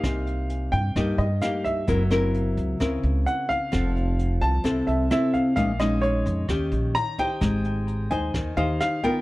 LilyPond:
<<
  \new Staff \with { instrumentName = "Grand piano" } { \time 4/4 \key f \minor \tempo 4 = 130 f''4. g''4 ees''8 f''8 e''8~ | e''2. ges''8 f''8~ | f''4. a''4 e''8 e''8 f''8 | f''8 ees''8 des''2 bes''8 g''8~ |
g''4. aes''4 f''8 f''8 g''8 | }
  \new Staff \with { instrumentName = "Nylon-string guitar" } { \time 4/4 \key f \minor << { <bes ees' g'>4. r8 <bes ees' g'>8 r8 <bes ees' g'>4 | <c' fes' bes'>8 <c' fes' bes'>4. <c' fes' bes'>2 | <c' a'>2 <c' e' a'>4 <c' e' a'>4 | <aes des' ees'>8 <aes des' ees'>4. <des' g'>4 r8 <ees' g' c''>8~ |
<ees' g' c''>4. <ees' c''>4 <ees' g' c''>4 <b f' bes'>8 | } \\ { c2 g,2 | ges2 des2 | f2 c2 | bes,2 ees2 |
aes2 ees2 | } >> }
  \new Staff \with { instrumentName = "Upright bass" } { \clef bass \time 4/4 \key f \minor c,4. g,8 g,8 g,8 r4 | ges,,4. des,8 des,8 des,8 r4 | f,,4. c,8 r8 c,8 r4 | bes,,4. f,8 ees,8 bes,,8 r4 |
aes,,4. ees,8 ees,8 ees,8 r4 | }
  \new DrumStaff \with { instrumentName = "Drums" } \drummode { \time 4/4 <hh bd ss>8 hh8 hh8 <hh bd>8 <hh bd ss>8 hh8 <hh ss>8 <hh bd>8 | <hh bd>8 <hh ss>8 hh8 <hh bd>8 <hh bd ss>8 hh8 hh8 <hh bd>8 | <hh bd ss>8 hh8 hh8 <hh bd>8 <hh bd ss>8 hh8 <hh ss>8 <hh bd>8 | <hh bd>8 <hh ss>8 hh8 <hh bd>8 <hh bd ss>8 hh8 hh8 <hh bd>8 |
<hh bd ss>8 hh8 hh8 <hh bd>8 <hh bd ss>8 hh8 <hh ss>8 <hh bd>8 | }
>>